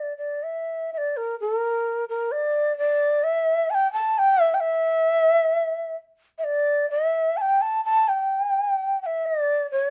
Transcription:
0.00 0.17 D5 medium
0.18 0.45 D5 medium
0.43 0.91 E5 medium
0.93 0.99 E5 medium
0.98 1.18 D5 medium
1.17 1.39 A#4 medium
1.40 1.56 A4 medium
1.56 2.05 A#4 medium
2.09 2.33 A#4 medium
2.32 2.76 D5 medium
2.78 3.25 D5 medium
3.24 3.72 E5 medium
3.70 3.76 A5 medium
3.75 3.91 G5 loud
3.93 4.20 A5 medium
4.18 4.42 G5 loud
4.42 4.56 E5 loud
4.54 4.62 G5 medium
4.61 5.97 E5 loud
6.38 6.46 E5 medium
6.44 6.90 D5 medium
6.91 7.39 E5 medium
7.37 7.42 A5 medium
7.41 7.63 G5 medium
7.62 7.84 A5 medium
7.85 8.10 A5 medium
8.08 9.01 G5 medium
9.02 9.28 E5 medium
9.02 9.07 G5 medium
9.26 9.70 D5 medium
9.71 9.89 C#5 medium

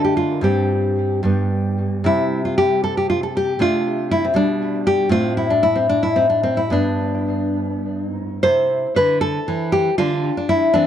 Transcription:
0.00 0.40 D3 medium
0.00 0.41 A3 soft
0.00 0.41 D4 soft
0.04 0.16 G4 medium
0.17 0.43 F4 medium
0.41 1.22 G2 soft
0.41 1.22 G3 soft
0.41 1.23 C4 soft
0.41 1.22 G4 medium
1.23 2.03 G2 soft
1.23 2.04 G3 soft
1.23 2.04 B3 soft
2.04 3.58 C3 soft
2.04 3.58 G3 soft
2.04 3.59 C4 soft
2.04 2.45 E4 medium
2.45 2.57 F4 soft
2.58 2.83 G4 medium
2.84 2.97 A4 medium
2.97 3.09 G4 medium
3.10 3.23 F4 medium
3.23 3.36 A4 medium
3.37 3.61 G4 medium
3.59 4.33 C3 medium
3.59 4.34 A3 soft
3.59 4.24 D4 soft
3.59 4.10 F4 medium
4.11 4.25 E4 medium
4.25 4.36 C4 medium
4.34 5.09 B2 medium
4.34 5.09 G3 soft
4.34 4.85 D4 medium
4.87 5.11 G4 medium
5.09 6.69 A2 medium
5.09 6.70 A3 medium
5.09 5.50 C4 medium
5.09 5.37 F4 medium
5.37 5.51 E4 medium
5.50 5.64 D4 medium
5.63 5.77 E4 medium
5.75 5.89 C4 medium
5.89 6.04 D4 medium
6.03 6.17 E4 medium
6.16 6.29 C4 medium
6.30 6.43 D4 medium
6.43 6.59 C4 medium
6.57 6.73 E4 medium
6.70 8.38 G2 soft
6.70 8.39 B3 soft
6.70 7.55 D4 medium
8.43 8.86 C3 medium
8.43 9.95 E4 soft
8.43 8.94 C5 medium
8.96 9.38 D3 medium
8.96 9.21 B4 medium
9.21 9.71 A4 medium
9.48 9.89 E3 medium
9.72 9.98 G4 medium
9.98 10.30 D3 medium
9.98 10.36 D4 soft
9.98 10.48 F4 medium
10.37 10.68 D4 medium
10.49 10.74 E4 medium
10.74 10.87 E3 medium
10.74 10.87 C4 soft
10.74 10.87 D4 medium

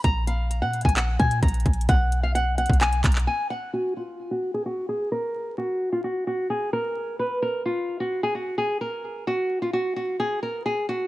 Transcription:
0.04 0.63 A#1 loud
0.04 0.24 A#5 loud
0.04 kick loud
0.04 closed hi-hat medium
0.27 0.60 F5 medium
0.27 closed hi-hat medium
0.51 closed hi-hat medium
0.62 0.84 A#2 loud
0.62 0.81 F#5 medium
0.73 closed hi-hat soft
0.81 1.18 A#1 loud
0.81 0.95 G#5 medium
0.81 kick medium
0.81 closed hi-hat medium
0.89 closed hi-hat medium
0.97 1.16 F#5 medium
0.97 clap loud
0.97 closed hi-hat medium
1.19 1.42 A#2 loud
1.19 1.39 G#5 medium
1.19 kick loud
1.19 closed hi-hat soft
1.31 closed hi-hat medium
1.43 1.65 A#1 loud
1.43 1.86 A#5 medium
1.43 kick loud
1.43 closed hi-hat medium
1.48 closed hi-hat medium
1.54 closed hi-hat medium
1.60 closed hi-hat soft
1.66 1.88 A#1 loud
1.66 kick medium
1.66 closed hi-hat medium
1.73 closed hi-hat medium
1.81 closed hi-hat medium
1.89 2.66 B1 loud
1.89 2.21 F#5 loud
1.89 kick loud
1.89 closed hi-hat medium
2.12 closed hi-hat medium
2.23 2.33 F5 medium
2.35 2.54 F#5 medium
2.35 closed hi-hat medium
2.58 2.77 F#5 medium
2.58 closed hi-hat medium
2.66 3.03 B1 loud
2.66 kick medium
2.66 closed hi-hat medium
2.73 closed hi-hat medium
2.81 3.01 G#5 medium
2.81 clap loud
2.81 closed hi-hat soft
2.93 closed hi-hat medium
3.04 3.27 B1 loud
3.04 3.24 A#5 medium
3.04 kick loud
3.04 clap loud
3.04 closed hi-hat medium
3.12 clap medium
3.12 closed hi-hat medium
3.20 closed hi-hat soft
3.27 3.47 G#5 medium
3.50 3.70 F#5 medium
3.73 3.93 F#4 medium
3.97 4.29 F4 medium
4.31 4.51 F#4 medium
4.54 4.64 G#4 medium
4.66 4.85 F#4 medium
4.89 5.08 G#4 medium
5.12 5.55 A#4 medium
5.58 5.90 F#4 loud
5.92 6.02 F4 medium
6.04 6.23 F#4 medium
6.27 6.47 F#4 medium
6.50 6.70 G#4 medium
6.73 7.17 A#4 medium
7.19 7.39 B4 medium
7.42 7.62 A#4 loud
7.66 7.98 F4 medium
8.00 8.20 F#4 medium
8.23 8.33 G#4 medium
8.35 8.54 F#4 medium
8.58 8.77 G#4 medium
8.81 9.24 A#4 medium
9.27 9.60 F#4 loud
9.62 9.72 F4 medium
9.73 9.93 F#4 medium
9.96 10.16 F#4 medium
10.20 10.39 G#4 medium
10.43 10.62 A#4 medium
10.66 10.85 G#4 medium
10.89 11.07 F#4 medium

